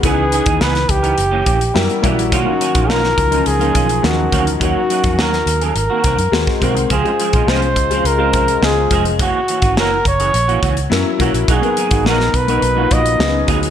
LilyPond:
<<
  \new Staff \with { instrumentName = "Flugelhorn" } { \time 4/4 \key b \lydian \tempo 4 = 105 gis'4 b'8 g'2 r8 | fis'4 ais'4 gis'4 fis'8. r16 | fis'4 ais'8. ais'4.~ ais'16 r8 | gis'4 bis'4 ais'4 gis'8. r16 |
fis'4 ais'8 cis''4. r4 | gis'4 ais'8 b'4 dis''4 r8 | }
  \new Staff \with { instrumentName = "Grand piano" } { \time 4/4 \key b \lydian <e cis' dis' b'>4. r4. <g e' fis' ais'>16 r16 <g e' fis' ais'>8 | r16 <fis cis' dis' ais'>8 r16 <eis cis' dis' ais'>8 r16 <eis cis' dis' ais'>16 r16 <eis cis' dis' ais'>8 r16 <fis cis' dis' ais'>4 | <fis cis' dis' ais'>4. r4. <gis bis fis' ais'>16 r16 <gis bis fis' ais'>8 | r16 <gis cis' eis' bis'>8 r16 <gis cis' eis' bis'>8 r16 <gis cis' eis' bis'>16 r16 <gis cis' eis' bis'>8 r16 <gis cis' eis' bis'>4 |
r2. <fis cis' e' ais'>16 r16 <fis cis' e' ais'>8 | r16 <fis b dis' ais'>8 r16 <fis b dis' ais'>8 r16 <fis b dis' ais'>16 r16 <fis b dis' eis'>8 r16 <fis b cis' dis' gis'>4 | }
  \new Staff \with { instrumentName = "Clean electric guitar" } { \time 4/4 \key b \lydian <e b dis' gis'>16 r16 <e b dis' gis'>16 <e b dis' gis'>16 <e b dis' gis'>16 r8 <e b dis' ais'>16 r16 <e ais cis' g'>16 <e ais cis' g'>16 r8. <e ais cis' g'>16 r16 | <dis ais cis' eis'>16 r16 <dis ais cis' fis'>16 <dis ais cis' eis'>16 <dis ais cis' eis'>16 r8 <dis ais cis' eis'>16 r16 <dis ais cis' eis'>16 <dis ais cis' eis'>16 r8. <dis ais cis' fis'>16 r16 | <fis ais cis' fis'>16 r16 <fis ais cis' fis'>16 <fis ais cis' fis'>16 <fis ais cis' fis'>16 r8 <fis ais cis' gis'>16 r16 <dis ais bis fis'>16 <dis ais bis fis'>16 r8. <dis ais bis fis'>16 r16 | <eis gis bis eis'>16 r16 <eis gis bis gis'>16 <eis gis bis eis'>16 <eis gis bis eis'>16 r8 <eis gis bis eis'>16 r16 <eis gis bis eis'>16 <eis gis bis eis'>16 r8. <eis gis bis gis'>16 r16 |
<e ais cis' fis'>16 r16 <e ais cis' fis'>16 <e ais cis' fis'>16 <e ais cis' fis'>16 r8 <e ais cis' gis'>16 r16 <e ais cis' fis'>16 <e ais cis' fis'>16 r8. <e ais cis' fis'>16 r16 | <fis ais dis' fis'>16 r16 <fis ais dis' gis'>16 <fis ais dis' fis'>16 <fis ais dis' fis'>16 r8 <fis ais dis' fis'>16 r16 <fis ais dis' fis'>16 <fis ais dis' fis'>16 r8. <fis ais dis' gis'>16 r16 | }
  \new Staff \with { instrumentName = "Fingered electric bass" } { \clef bass \time 4/4 \key b \lydian cis,8. dis,16 cis,8 cis,8 fis,,8 ais,,8 fis,16 r16 b,,16 ais,,16 | b,,16 r8 ais,,16 b,,8 cis,8 cis,8 b,,8 dis,8 d,8 | dis,16 r8 eis,16 dis,8 dis,8 gis,,16 r16 bis,,16 fis,16 dis,16 r16 b,,16 bis,,16 | cis,16 r8 ais,,16 bis,,8 cis,8 cis,8 bis,,8 cis,8 eis,,8 |
fis,,16 r8 gis,,16 fis,,8 fis,,8 ais,,8 cis,8 fis,16 r16 b,,16 ais,,16 | b,,16 r8 gis,,16 ais,,8 b,,8 b,,8 ais,,8 cis,8 d,8 | }
  \new DrumStaff \with { instrumentName = "Drums" } \drummode { \time 4/4 <hh bd>8 hh16 <hh bd>16 sn16 <hh sn>16 <hh bd>16 hh16 hh8 <hh bd>16 hh16 sn16 hh16 <hh bd>16 hh16 | <hh bd>8 hh16 <hh bd>16 sn16 sn16 <hh bd>16 hh16 hh16 hh16 <hh bd>16 hh16 sn8 <hh bd>16 hh16 | <hh bd>8 hh16 <hh bd>16 sn16 sn16 hh16 hh16 hh8 <hh bd>16 hh16 sn16 <bd sn>16 <hh bd>16 hh16 | <hh bd>16 hh16 hh16 <hh bd>16 sn16 hh16 <hh bd>16 hh16 hh8 <hh bd>16 hh16 sn8 <hh bd>16 hh16 |
<hh bd>8 hh16 <hh bd>16 sn8 <hh bd>16 hh16 hh16 hh16 <hh bd>16 hh16 sn8 <hh bd>16 hh16 | <hh bd>16 hh16 hh16 <hh bd>16 sn16 sn16 <hh bd>16 hh16 hh8 <hh bd>16 hh16 sn8 <hh bd>16 hh16 | }
>>